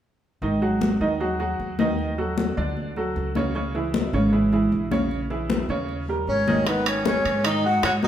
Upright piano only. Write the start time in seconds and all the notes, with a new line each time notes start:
0.42 D#3 D#4 D#5
0.62 F#3 F#4 G#4
1.01 D#3 D#4 D#5
1.20 F#3 F#4 G#4
1.39 F#3 F#4 G#4
1.79 D#3 D#4 D#5
2.18 F#3 F#4 A4
2.57 D3 D4 D5
2.97 F#3 F#4 A4
3.36 C#3 C#4 C#5
3.55 C#3 C#4 C#5
3.75 E3 E4 G#4
4.13 C#3 C#4 C#5
4.32 E3 E4 G#4
4.52 E3 E4 G#4
4.91 C#3 C#4 C#5
5.30 E3 E4 G#4
5.70 C#3 C#4 C#5
6.09 G3 G4 A#4
6.48 D#3 D#4 D#5
6.67 D#3 D#4
7.06 G#3 G#4
7.45 D#3 D#4
7.64 G#3 G#4
8.03 F#3 F#4